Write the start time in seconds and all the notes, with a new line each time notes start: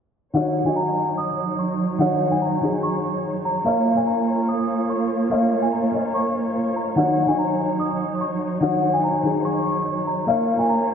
0.34 D#3 F#3 D#4 F#4 C#5 F#5
0.64 D#3 D#4 F#4 D#5 G#5
0.76 A#5
1.18 D#6
1.59 C#6
1.98 D#3 D#4 F#4 C#5 F#5
2.31 G#5
2.61 D#3 D#4 F#4 G#4
2.83 C#6
3.45 A#5
3.64 A#3 F4 A#4 C#5 F5
3.95 A#3 A#4 C#5 G#5
4.07 A#5
4.49 D#6
4.90 C#6
5.30 A#3 A#4 C#5 F5
5.62 G#5
5.73 A#5
5.92 A#3 A#4 C#5 D#5
6.14 C#6
6.76 A#5
6.96 D#3 F#3 D#4 F#4 C#5 F#5
7.27 D#3 D#4 F#4 D#5 G#5
7.38 A#5
7.80 D#6
8.21 C#6
8.60 D#3 D#4 F#4 C#5 F#5
8.93 G#5
9.04 A#5
9.23 D#3 D#4 F#4 G#4
9.45 C#6
10.07 A#5
10.26 A#3 F4 A#4 C#5 F5
10.57 A#3 A#4 C#5 G#5
10.69 A#5